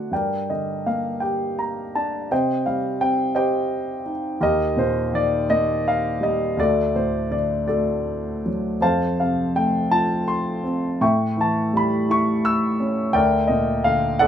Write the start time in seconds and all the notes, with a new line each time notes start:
Already playing: D3 A3 F#4 D5 F#5
0.11 G2 A#4 D5 G5
0.50 D3 D#5
0.86 A#3 F5
1.20 G4 G5
1.59 A#5
1.95 D4 A5
2.31 C3 C5 D#5 G5
2.66 G3 F5
3.01 C4 G5
3.35 G4 C5 D#5 G5
4.06 D#4
4.41 D#2 G4 A#4 D#5
4.77 A#2 C5
5.13 D#3 D5
5.49 A#3 D#5
5.88 F5
6.21 G3 D#5
6.57 D2 F#4 A4 D5
6.96 A2 C5
7.31 D3 D5
7.67 A3 F#4 A4 D5
8.46 F#3
8.81 F2 C5 F5 A5
9.20 C3 F5
9.56 A3 G5
9.91 F4 A5
10.28 C6
10.64 C4
11.01 A2 E5 G5 C#6
11.37 E3
11.41 A5
11.73 G3 B5
12.09 E4 C#6
12.45 E6
12.80 C#4
13.13 D2 A#4 D5 G5
13.47 A#2 D#5
13.84 D3 F5
14.19 D2 A4 D5 F#5